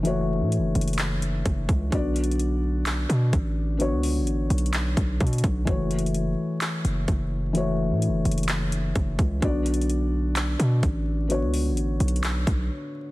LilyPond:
<<
  \new Staff \with { instrumentName = "Felt piano" } { \time 4/4 \key b \dorian \tempo 4 = 128 <e a fis' cis''>1 | <d b fis' d''>1 | <d b fis' cis''>1 | <e a fis' cis''>1 |
<e a fis' cis''>1 | <d b fis' d''>1 | <d b fis' cis''>1 | }
  \new Staff \with { instrumentName = "808-style bass" } { \clef bass \time 4/4 \key b \dorian fis,,8. a,16. fis,,16. fis,,4. fis,,8 cis,8 | b,,2~ b,,8 b,8 a,,4~ | a,,16 cis,8~ cis,32 a,,8~ a,,32 b,,4 b,,8 b,8 b,,8 | fis,,4. r4 fis,,8 fis,,4~ |
fis,,8. a,16. fis,,16. fis,,4. fis,,8 cis,8 | b,,2~ b,,8 b,8 a,,4~ | a,,16 cis,8~ cis,32 a,,8~ a,,32 b,,4 b,,8 r4 | }
  \new DrumStaff \with { instrumentName = "Drums" } \drummode { \time 4/4 hh4 hh8 hh32 hh32 hh32 hh32 <hc hh>8 hh8 <hh bd>8 <hh bd>8 | \tuplet 3/2 { <hh bd>16 r16 r16 hh16 hh16 hh16 } hh4 <hc hh>8 hh8 <hh bd>4 | hh8 hho8 \tuplet 3/2 { hh16 r16 r16 hh16 hh16 hh16 } <hc hh>8 <hh bd>8 <hh bd>32 hh32 hh32 hh32 <hh bd>8 | \tuplet 3/2 { <hh bd>16 r16 r16 hh16 hh16 hh16 } hh4 <hc hh>8 hh8 <hh bd>4 |
hh4 hh8 hh32 hh32 hh32 hh32 <hc hh>8 hh8 <hh bd>8 <hh bd>8 | \tuplet 3/2 { <hh bd>16 r16 r16 hh16 hh16 hh16 } hh4 <hc hh>8 hh8 <hh bd>4 | hh8 hho8 \tuplet 3/2 { hh16 r16 r16 hh16 hh16 hh16 } <hc hh>8 <hh bd>8 r4 | }
>>